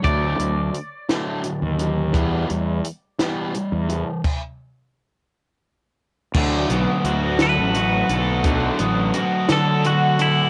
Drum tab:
CC |------|------|x-----|x-----|
HH |xxxxxx|xxxxxx|------|-xxxxx|
SD |---o--|---o--|------|---o--|
BD |o-----|o-----|o-----|o-----|

CC |------|
HH |xxxxxx|
SD |---o--|
BD |o-----|